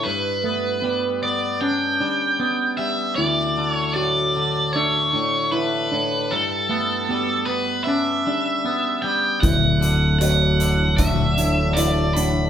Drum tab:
HH |--------|--------|--------|xxxxxxxx|
BD |--------|--------|--------|o---o---|